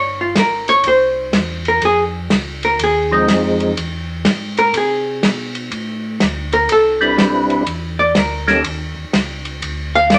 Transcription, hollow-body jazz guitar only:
0.00 0.20 C#5 medium
0.21 0.36 F4 soft
0.39 0.69 A#4 medium
0.69 0.84 C#5 loud
0.88 1.63 C5 medium
1.68 1.83 A#4 medium
1.85 2.03 G#4 medium
2.65 2.80 A#4 medium
2.84 3.58 G#4 medium
4.59 4.74 A#4 loud
4.77 5.53 G#4 medium
6.53 6.69 A#4 medium
6.72 7.48 A4 medium
7.99 8.15 D5 medium
8.19 8.94 A#4 medium
9.95 10.11 F5 loud
10.14 10.19 D5 medium

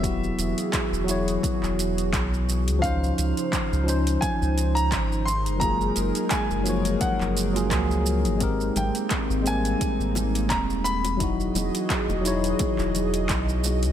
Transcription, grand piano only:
0.00 1.75 E5 loud
2.82 3.83 F5 loud
4.21 4.77 G#5 medium
4.75 5.23 A#5 loud
5.25 5.62 C6 loud
5.60 6.27 A#5 loud
6.30 7.03 G#5 medium
7.01 8.02 F#5 medium
8.77 9.48 G5 medium
9.47 10.54 G#5 loud
10.50 10.58 A#5 loud
10.84 11.50 B5 loud

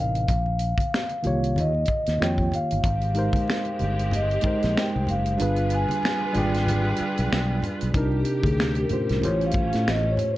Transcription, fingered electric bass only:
0.00 0.25 A1 loud
0.29 0.73 A#1 medium
1.26 1.53 C2 medium
1.58 1.85 D#2 loud
2.08 2.19 D#2 medium
2.21 2.49 F2 medium
2.72 2.83 G1 medium
2.85 3.28 G#1 medium
3.82 4.37 G1 medium
4.45 muted fingered electric bass stroke soft
4.64 4.75 A#1 loud
4.96 5.07 C2 loud
5.09 5.36 F#1 medium
5.41 5.84 G1 loud
6.37 6.92 G#1 medium
7.01 muted fingered electric bass stroke soft
7.19 7.30 B1 medium
7.32 7.60 B1 medium
7.83 7.94 B1 medium
7.95 8.23 C2 medium
8.45 8.85 D2 medium
8.92 muted fingered electric bass stroke soft
9.11 9.21 C2 medium
9.24 9.51 A1 loud
9.55 9.71 A1 medium
9.74 9.85 A2 medium
9.88 10.15 A1 medium

